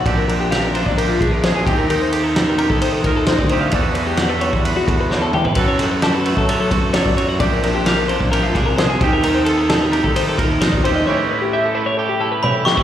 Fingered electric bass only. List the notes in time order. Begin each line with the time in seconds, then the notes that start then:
0.06 A#1
0.86 A#1
1.21 A#1
1.66 D#2
1.90 D#2
2.70 D#3
3.04 D#2
3.39 D2
3.73 E2
4.53 E2
4.88 E2
5.35 E2
5.56 F#2
6.37 F#3
6.71 F#2
7.06 F#2
7.40 A#1
8.21 A#1
8.55 C2
9.01 D#2
9.25 D#2
10.05 D#3
10.38 D#2
10.73 D#2